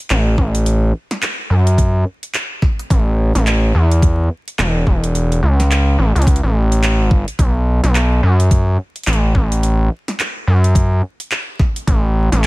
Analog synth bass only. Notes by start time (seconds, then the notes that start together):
0.10 A1
0.38 A1
1.50 F#2
2.90 A1
3.35 A1
3.75 E2
4.59 E1
4.87 E1
5.43 C#2
5.99 A1
6.15 C#2
6.43 A1
7.01 G#1
7.39 B1
7.84 B1
8.23 F#2
9.07 A1
9.35 A1
10.47 F#2
11.87 A1
12.32 A1